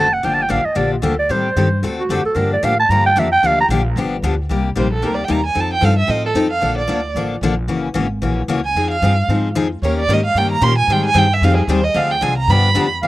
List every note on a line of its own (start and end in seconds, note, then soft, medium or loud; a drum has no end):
0.00 0.22 F#1 medium
0.00 0.15 A5 loud
0.13 0.26 F#5 medium
0.23 0.49 G1 medium
0.23 0.42 D3 medium
0.23 0.42 F3 medium
0.23 0.42 A#3 medium
0.23 0.42 D4 medium
0.23 0.42 G4 medium
0.23 0.35 G5 medium
0.34 0.44 A5 medium
0.42 0.52 G5 medium
0.49 0.64 A1 medium
0.49 0.60 D3 medium
0.49 0.60 F3 medium
0.49 0.60 A#3 medium
0.49 0.60 D4 medium
0.49 0.60 G4 medium
0.49 0.67 F5 medium
0.65 0.78 D#5 medium
0.65 muted upright bass stroke soft
0.75 1.01 A#1 medium
0.75 0.94 D3 medium
0.75 0.94 F3 medium
0.75 0.94 A#3 medium
0.75 0.94 D4 medium
0.75 0.95 G4 medium
0.75 0.92 D5 medium
0.93 1.05 F4 medium
1.02 1.28 D2 medium
1.02 1.13 D3 medium
1.02 1.13 F3 medium
1.02 1.13 A#3 medium
1.02 1.13 D4 medium
1.02 1.14 G4 medium
1.02 1.18 A4 medium
1.19 1.32 D5 medium
1.29 1.55 A2 medium
1.29 1.48 D#3 medium
1.29 1.48 G3 medium
1.29 1.48 C4 medium
1.29 1.48 G4 medium
1.29 1.49 A4 medium
1.29 1.84 C5 medium
1.56 1.82 G2 medium
1.56 1.67 D#3 medium
1.56 1.67 G3 medium
1.56 1.67 C4 medium
1.56 1.67 G4 medium
1.56 1.68 A4 medium
1.83 2.09 D2 medium
1.83 2.01 D3 medium
1.83 2.02 A3 medium
1.83 2.02 C4 medium
1.83 2.02 F#4 medium
1.83 2.02 A4 medium
1.99 2.13 F#4 medium
2.09 2.24 F#2 medium
2.09 2.20 D3 medium
2.09 2.20 A3 medium
2.09 2.20 C4 medium
2.09 2.21 F#4 medium
2.09 2.25 G4 medium
2.09 2.21 A4 loud
2.25 2.37 A4 medium
2.25 muted upright bass stroke soft
2.35 2.62 G2 medium
2.35 2.54 D3 medium
2.35 2.54 F3 medium
2.35 2.54 A#3 medium
2.35 2.54 D4 medium
2.35 2.55 G4 medium
2.35 2.51 A#4 medium
2.53 2.66 D5 medium
2.63 2.88 A2 medium
2.63 2.73 D3 medium
2.63 2.73 F3 medium
2.63 2.74 A#3 medium
2.63 2.74 D4 medium
2.63 2.74 G4 loud
2.63 2.79 F5 medium
2.79 2.92 A5 loud
2.89 3.15 G2 medium
2.89 3.08 D3 medium
2.89 3.09 F3 medium
2.89 3.09 A#3 medium
2.89 3.09 D4 medium
2.89 3.09 G4 medium
2.89 3.05 A#5 loud
3.06 3.21 G5 loud
3.16 3.42 F2 medium
3.16 3.26 D3 medium
3.16 3.27 F3 medium
3.16 3.27 A#3 medium
3.16 3.27 D4 loud
3.16 3.27 G4 medium
3.16 3.32 E5 medium
3.32 3.48 G5 loud
3.43 3.68 D2 medium
3.43 3.61 D3 medium
3.43 3.62 F3 medium
3.43 3.62 A#3 medium
3.43 3.62 D4 medium
3.43 3.62 G4 medium
3.43 3.60 F5 medium
3.61 3.67 A#5 loud
3.69 3.95 A#1 medium
3.69 3.80 D3 medium
3.69 3.81 F3 medium
3.69 3.80 A#3 medium
3.69 3.81 D4 loud
3.69 3.81 G4 loud
3.96 4.22 G1 medium
3.96 4.15 D3 medium
3.96 4.15 F3 medium
3.96 4.15 B3 medium
3.96 4.16 D4 medium
3.96 4.16 G4 medium
4.22 4.49 D2 medium
4.22 4.34 D3 loud
4.22 4.34 F3 medium
4.22 4.34 B3 loud
4.22 4.34 D4 medium
4.22 4.34 G4 medium
4.49 4.75 C2 medium
4.49 4.68 C3 medium
4.49 4.68 G3 medium
4.49 4.69 A#3 medium
4.49 4.69 D#4 medium
4.49 4.69 G4 medium
4.75 5.02 A#1 medium
4.75 4.86 C3 medium
4.75 4.86 G3 medium
4.75 4.87 A#3 medium
4.75 4.87 D#4 medium
4.75 4.87 G4 medium
4.75 4.91 C5 medium
4.93 5.08 A4 medium
5.02 5.29 D2 medium
5.02 5.21 C3 medium
5.02 5.21 G3 medium
5.02 5.21 A#3 medium
5.02 5.21 D#4 medium
5.02 5.22 G4 medium
5.06 5.16 A#4 medium
5.14 5.26 D5 medium
5.24 5.39 G3 medium
5.24 5.34 G5 medium
5.28 5.55 D#2 medium
5.28 5.39 C3 medium
5.28 5.39 A#3 medium
5.28 5.40 D#4 medium
5.28 5.40 G4 medium
5.33 5.46 A#5 medium
5.46 5.62 G#5 medium
5.55 5.81 F2 medium
5.55 5.74 F3 medium
5.55 5.74 C4 medium
5.55 5.74 D#4 medium
5.55 5.74 A4 medium
5.60 5.73 A5 medium
5.73 5.86 G5 medium
5.81 6.08 G2 medium
5.81 5.92 F3 medium
5.81 5.93 C4 medium
5.81 5.93 D#4 medium
5.81 5.93 A4 medium
5.81 5.98 F5 medium
5.98 6.12 E5 medium
6.07 6.34 A2 medium
6.07 6.27 F3 medium
6.07 6.27 C4 medium
6.07 6.27 D#4 medium
6.07 6.28 A4 medium
6.07 6.25 D#5 medium
6.25 6.32 A4 medium
6.34 6.61 F2 medium
6.34 6.46 F3 medium
6.34 6.46 C4 medium
6.34 6.46 D#4 loud
6.34 6.47 A4 loud
6.50 6.76 F5 medium
6.61 6.88 A#1 medium
6.61 6.80 D3 medium
6.61 6.81 F3 medium
6.61 6.81 A#3 medium
6.61 6.81 D4 medium
6.61 6.81 A4 medium
6.78 7.13 D5 medium
6.88 7.14 D2 medium
6.88 6.99 D3 medium
6.88 6.99 F3 medium
6.88 7.00 A#3 medium
6.88 6.99 D4 medium
6.88 7.00 A4 medium
7.15 7.41 A1 medium
7.15 7.34 D3 medium
7.15 7.35 F3 medium
7.15 7.35 A#3 medium
7.15 7.35 D4 medium
7.15 7.35 A4 medium
7.41 7.67 A#1 medium
7.41 7.53 D3 medium
7.41 7.53 F3 medium
7.41 7.53 A#3 loud
7.41 7.54 D4 medium
7.41 7.54 A4 medium
7.68 7.94 F#1 medium
7.68 7.87 C#3 medium
7.68 7.87 E3 medium
7.68 7.88 A#3 medium
7.68 7.88 C#4 medium
7.68 7.88 F#4 medium
7.94 8.21 G#1 medium
7.94 8.05 C#3 medium
7.94 8.06 E3 medium
7.94 8.06 A#3 medium
7.94 8.06 C#4 medium
7.94 8.06 F#4 medium
8.22 8.48 A#1 medium
8.22 8.41 C#3 medium
8.22 8.41 E3 medium
8.22 8.41 A#3 medium
8.22 8.41 C#4 medium
8.22 8.42 F#4 medium
8.48 8.74 C#2 medium
8.48 8.59 C#3 medium
8.48 8.59 E3 medium
8.48 8.60 A#3 medium
8.48 8.60 C#4 loud
8.48 8.60 F#4 medium
8.65 8.90 G#5 medium
8.75 9.01 F2 medium
8.75 8.95 F3 medium
8.75 8.95 C4 medium
8.75 8.95 D#4 medium
8.75 8.95 G#4 medium
8.91 9.27 F5 medium
9.02 9.28 G2 medium
9.02 9.13 F3 medium
9.02 9.14 C4 medium
9.02 9.14 D#4 medium
9.02 9.14 G#4 medium
9.28 9.55 G#2 medium
9.28 9.48 F3 medium
9.28 9.48 C4 medium
9.28 9.48 D#4 medium
9.28 9.48 G#4 medium
9.55 9.81 F2 medium
9.55 9.66 F3 medium
9.55 9.66 C4 loud
9.55 9.66 D#4 loud
9.55 9.67 G#4 loud
9.82 10.08 D#2 medium
9.82 10.01 D#3 medium
9.82 10.02 A#3 medium
9.82 10.02 C#4 medium
9.82 10.02 G4 medium
9.82 10.02 A#4 medium
9.82 9.97 C#5 medium
10.00 10.15 D5 medium
10.08 10.34 G#2 medium
10.08 10.19 D#3 medium
10.08 10.20 A#3 medium
10.08 10.20 C#4 medium
10.08 10.20 G4 medium
10.08 10.20 A#4 loud
10.13 10.25 D#5 medium
10.25 10.39 F5 medium
10.35 10.61 G2 medium
10.35 10.55 D#3 medium
10.35 10.55 A#3 medium
10.35 10.55 C#4 medium
10.35 10.55 G4 medium
10.35 10.55 A#4 medium
10.35 10.51 G5 medium
10.51 10.65 A#5 medium
10.61 10.87 A#2 medium
10.61 10.72 D#3 medium
10.61 10.73 A#3 medium
10.61 10.72 C#4 loud
10.61 10.73 G4 loud
10.61 10.73 A#4 loud
10.61 10.78 C6 loud
10.78 10.93 G#5 medium
10.88 11.14 G#2 medium
10.88 11.08 D#3 medium
10.88 11.08 G3 medium
10.88 11.08 C4 medium
10.88 11.08 D#4 medium
10.88 11.08 G#4 medium
10.92 11.05 G5 medium
11.05 11.20 G#5 loud
11.14 11.41 G2 medium
11.14 11.25 D#3 medium
11.14 11.25 G3 medium
11.14 11.26 C4 medium
11.14 11.26 D#4 medium
11.14 11.26 G#4 medium
11.18 11.35 G5 loud
11.33 11.45 E5 medium
11.41 11.67 F2 loud
11.41 11.61 D#3 medium
11.41 11.61 G3 medium
11.41 11.62 C4 medium
11.41 11.61 D#4 medium
11.41 11.62 G#4 medium
11.41 11.56 F5 loud
11.57 11.72 G#4 soft
11.67 11.94 D#2 medium
11.67 11.79 D#3 loud
11.67 11.80 G3 loud
11.67 11.80 C4 loud
11.67 11.80 D#4 medium
11.67 11.80 G#4 loud
11.67 11.85 C5 medium
11.84 11.98 D#5 medium
11.94 12.21 D2 medium
11.94 12.14 D3 medium
11.94 12.14 F3 medium
11.94 12.14 C4 medium
11.94 12.14 D4 medium
11.94 12.15 G#4 medium
11.94 12.13 F5 medium
12.11 12.24 G5 medium
12.21 12.47 C2 medium
12.21 12.32 D3 medium
12.21 12.33 F3 loud
12.21 12.33 C4 medium
12.21 12.33 D4 loud
12.21 12.33 G#4 medium
12.21 12.37 G#5 medium
12.38 12.51 A#5 loud
12.48 12.74 G2 loud
12.48 12.68 D3 medium
12.48 12.68 F3 medium
12.48 12.68 B3 medium
12.48 12.68 D4 medium
12.48 12.69 G4 medium
12.48 12.92 B5 loud
12.75 13.02 F2 medium
12.75 12.86 D3 medium
12.75 12.86 F3 medium
12.75 12.86 B3 medium
12.75 12.86 D4 loud
12.75 12.86 G4 loud
13.02 13.07 G2 medium
13.02 13.07 D3 medium
13.02 13.07 F3 medium
13.02 13.07 A#3 medium
13.02 13.07 D4 medium
13.02 13.07 F5 medium